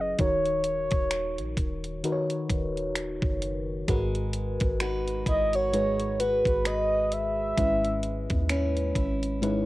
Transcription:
Already playing: 808-style bass F#1, fm electric piano F#3 C#4 E4 G#4 B4
0.01 soft synth lead D#5
0.19 808-style bass D#1, fm electric piano D#3 D#4 F#4 A#4 C#5, soft synth lead C#5, kick, closed hi-hat
0.46 closed hi-hat
0.64 closed hi-hat
0.91 808-style bass D#1, kick, closed hi-hat
1.11 finger snap, closed hi-hat
1.38 808-style bass A#1, closed hi-hat
1.57 808-style bass D#1, kick, closed hi-hat
1.84 closed hi-hat
2.04 fm electric piano D#3 D#4 F#4 A#4 B4, closed hi-hat
2.12 fm electric piano C#5
2.30 closed hi-hat
2.50 808-style bass D#1, kick, closed hi-hat
2.77 closed hi-hat
2.95 finger snap, closed hi-hat
3.22 808-style bass F#1, kick
3.42 closed hi-hat
3.88 808-style bass G#1, fm electric piano G#2 G#3 F#4 A#4 B4, steel-string acoustic guitar G#3, kick, closed hi-hat
4.15 closed hi-hat
4.33 closed hi-hat
4.60 808-style bass G#1, kick, closed hi-hat
4.80 steel-string acoustic guitar D#4 F#4 B4, finger snap, closed hi-hat
5.08 closed hi-hat
5.26 808-style bass G#1, steel-string acoustic guitar E4, soft synth lead D#5, kick, closed hi-hat
5.53 steel-string acoustic guitar F#4, soft synth lead C#5, closed hi-hat
5.72 fm electric piano G#2 G#3 F#4 G#4 B4, steel-string acoustic guitar D#4, closed hi-hat
6.00 closed hi-hat
6.20 steel-string acoustic guitar F#4 B4, soft synth lead B4, closed hi-hat
6.45 808-style bass G#1, kick, closed hi-hat
6.65 steel-string acoustic guitar B4, soft synth lead D#5, finger snap, closed hi-hat
7.12 soft synth lead E5, closed hi-hat
7.57 808-style bass G#1, fm electric piano G#2 G#3 C#4 E4 B4, steel-string acoustic guitar G#3, kick, closed hi-hat
7.85 closed hi-hat
8.03 closed hi-hat
8.30 808-style bass D#2, kick, closed hi-hat
8.49 steel-string acoustic guitar C#4 E4 B4, finger snap, closed hi-hat
8.77 closed hi-hat
8.95 808-style bass G#1, steel-string acoustic guitar E4, kick, closed hi-hat
9.23 closed hi-hat
9.41 fm electric piano G#2 G#3 D#4 E4 B4, steel-string acoustic guitar C#4, closed hi-hat

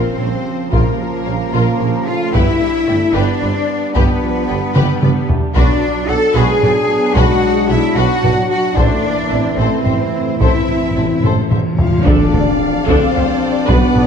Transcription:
Already playing: trombone section C#3 F3, viola section F3, french horn section C4, cello section C4, violin section F4 A#4 C5, impact
0.18 double bass section A#1, tuba A#1, viola section G3, violin section A#4 C#5
0.46 viola section F3
0.71 tuba A#1, double bass section A#1, viola section G3, cello section A#3, french horn section A#3, violin section F4 A#4, taiko
1.00 viola section F3
1.26 tuba A#1, double bass section A#1, viola section G3, violin section C#5 F5
1.52 tuba A#1, double bass section A#1, viola section F3, violin section F4 A#4
1.80 tuba A#1, double bass section A#1, viola section G3, violin section A#4 C#5
2.06 viola section A3, cello section F4, french horn section F4, violin section F5
2.33 double bass section G1, tuba G1, trombone section G3 D4, viola section B3, cello section E4, french horn section E4, violin section G4 B4 E5, taiko
2.62 viola section G3
2.88 tuba G1, double bass section G1, viola section A3, violin section D5 G5
3.14 tuba G1, double bass section G1, viola section B3, cello section D4, french horn section D4, violin section G4 B4 D5
3.41 tuba G1, double bass section G1, viola section C4, violin section B4 D5
3.69 viola section B3
3.95 tuba G1, double bass section G1, viola section G3, cello section B3, french horn section B3, violin section G4 B4, taiko
4.23 viola section F3
4.48 tuba G1, double bass section G1, viola section G3, violin section D5 G5
4.74 tuba G1, double bass section G1, violin section G4 B4, taiko mid
5.02 tuba G1, double bass section G1, violin section B4 D5, taiko mid
5.29 taiko low
5.55 double bass section B1, tuba B1, viola section F#3, trombone section F#3 D4, cello section D4, french horn section D4, violin section F#4 B4 D5, taiko
6.08 double bass section B1, tuba B1, french horn section A4, cello section A4, violin section D5 F#5 A5
6.34 double bass section B1, tuba B1, viola section G#3, violin section F#4 B4 G#5, french horn section G#4, cello section G#4
6.62 tuba B1, double bass section B1, viola section F#3, violin section B4 D5, taiko low-mid
6.91 viola section B3
7.15 double bass section B1, tuba B1, viola section G#3, violin section F#4 B4 F#5, french horn section F#4, cello section F#4, taiko
7.69 double bass section B1, tuba B1, cello section E4, french horn section E4, violin section D5 E5 F#5
7.96 double bass section B1, tuba B1, viola section F#3, violin section F#4 B4 F#5, french horn section F#4, cello section F#4
8.23 double bass section B1, tuba B1, violin section B4 D5, taiko low-mid
8.50 cello section F#4, french horn section F#4, violin section F#5
8.75 tuba A1, double bass section A1, trombone section E3 E4, viola section A3, french horn section D4, cello section D4, violin section A4 C5 D5, taiko
8.85 timpani A2
9.00 timpani A2, viola section A#3
9.06 timpani A2
9.14 timpani A2
9.22 timpani A2
9.28 double bass section A1, tuba A1, timpani A2, viola section C4, violin section E5 A5
9.37 timpani A2
9.44 timpani A2
9.57 double bass section A1, tuba A1, timpani A2, viola section A3, french horn section C4, cello section C4, violin section A4 C5
9.67 timpani A2
9.82 double bass section A1, tuba A1, timpani A2, viola section G3, violin section C5 E5, taiko low-mid
9.98 timpani A2
10.05 timpani A2
10.12 timpani A2, viola section A3
10.20 timpani A2
10.28 timpani A2
10.36 double bass section A1, timpani A2, french horn section E4
10.40 tuba A1, viola section C4, cello section E4, violin section A4 C5 E5, taiko
10.52 timpani A2
10.60 timpani A2
10.68 timpani A2
10.75 timpani A2
10.83 timpani A2
10.90 timpani A2
10.95 double bass section A1, tuba A1, timpani A2, violin section E5 A5
11.06 timpani A2
11.12 timpani A2
11.20 double bass section A1, tuba A1, timpani A2, violin section A4 C5, taiko low-mid
11.28 timpani A2
11.36 timpani A2
11.44 timpani A2
11.50 double bass section A1, tuba A1, timpani A2, violin section C5 E5, taiko low-mid
11.58 timpani A2
11.66 timpani A2
11.74 timpani A2, french horn section F4
11.79 timpani A2, violin section F5, taiko low
11.89 timpani A2
11.97 timpani A2
12.04 tuba D2, double bass section D2, cello section D3, trombone section F3 D4, french horn section D4, viola section D4 A4, violin section D5 F5, taiko, tam-tam, impact
12.33 double bass section D2, tuba D2, cello section D3, viola section A4, taiko low-mid
12.86 double bass section D2, tuba D2, cello section D3, french horn section C4, viola section D4 A4, violin section C5, taiko
13.14 tuba D2, double bass section D2, cello section D3, viola section A4
13.68 tuba B1, double bass section B1, cello section B2, trombone section F#3, french horn section B3, viola section F#4 B4, violin section B4 F#5, taiko
13.95 double bass section B1, tuba B1, cello section B2, viola section B4 D5, taiko low-mid

